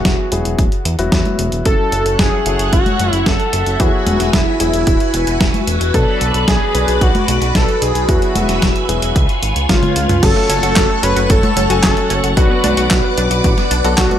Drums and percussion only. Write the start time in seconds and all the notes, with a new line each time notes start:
0.05 kick, snare, closed hi-hat
0.32 closed hi-hat
0.45 closed hi-hat
0.59 kick, closed hi-hat
0.72 closed hi-hat
0.85 closed hi-hat
0.99 closed hi-hat
1.12 kick, snare, closed hi-hat
1.25 closed hi-hat, high conga
1.39 closed hi-hat
1.52 closed hi-hat
1.65 kick, closed hi-hat
1.92 closed hi-hat
2.06 closed hi-hat
2.19 kick, snare, closed hi-hat
2.46 closed hi-hat
2.59 closed hi-hat
2.73 kick, closed hi-hat
2.86 closed hi-hat, high conga
2.99 closed hi-hat
3.13 closed hi-hat
3.26 kick, snare, closed hi-hat
3.40 closed hi-hat
3.53 closed hi-hat
3.66 closed hi-hat
3.80 kick, closed hi-hat
4.07 closed hi-hat, high conga
4.20 snare, closed hi-hat
4.33 kick, snare, closed hi-hat
4.60 closed hi-hat
4.73 closed hi-hat
4.87 kick, closed hi-hat
5.00 closed hi-hat
5.14 closed hi-hat
5.27 closed hi-hat
5.41 kick, snare, closed hi-hat
5.54 closed hi-hat, high conga
5.67 closed hi-hat
5.81 closed hi-hat
5.94 kick, closed hi-hat
6.21 closed hi-hat
6.34 closed hi-hat
6.48 kick, snare, closed hi-hat
6.75 closed hi-hat
6.88 closed hi-hat
7.01 kick, closed hi-hat
7.15 closed hi-hat, high conga
7.28 closed hi-hat
7.42 closed hi-hat
7.55 kick, snare, closed hi-hat
7.69 closed hi-hat
7.82 closed hi-hat
7.95 closed hi-hat
8.09 kick, closed hi-hat
8.22 closed hi-hat
8.36 closed hi-hat, high conga
8.49 snare, closed hi-hat
8.62 kick, snare, closed hi-hat
8.76 closed hi-hat
8.89 closed hi-hat
9.02 closed hi-hat
9.16 kick, closed hi-hat
9.29 closed hi-hat
9.43 closed hi-hat
9.56 closed hi-hat
9.69 kick, snare, closed hi-hat, high tom
9.83 closed hi-hat, high tom, high conga
9.96 closed hi-hat
10.09 closed hi-hat, mid tom
10.23 kick, closed hi-hat, crash
10.50 closed hi-hat
10.63 closed hi-hat
10.76 kick, snare, clap, closed hi-hat
11.03 closed hi-hat
11.17 closed hi-hat
11.30 kick, closed hi-hat
11.43 closed hi-hat, high conga
11.57 closed hi-hat
11.70 closed hi-hat
11.84 kick, snare, clap, closed hi-hat
11.97 closed hi-hat
12.10 closed hi-hat
12.24 closed hi-hat
12.37 kick, closed hi-hat
12.64 closed hi-hat, high conga
12.77 closed hi-hat
12.91 kick, snare, clap, closed hi-hat
13.18 closed hi-hat
13.31 closed hi-hat
13.44 kick, closed hi-hat
13.58 snare, closed hi-hat
13.71 closed hi-hat
13.84 closed hi-hat
13.98 kick, snare, clap, closed hi-hat
14.11 closed hi-hat, high conga